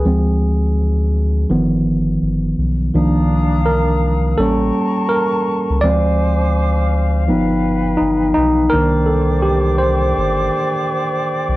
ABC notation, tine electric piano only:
X:1
M:4/4
L:1/8
Q:"Swing 16ths" 1/4=83
K:Dphr
V:1 name="Tine electric piano"
^G2 z6 | z2 B2 A2 B2 | d6 E E | B A G c4- c |]
V:2 name="Tine electric piano"
[F,_A,C]4 [^D,F,=B,]3 z | [E,F,B,D] z3 [G,B,^C]4 | [F,_A,C] z3 [F,=B,E] z3 | [E,B,D] z6 z |]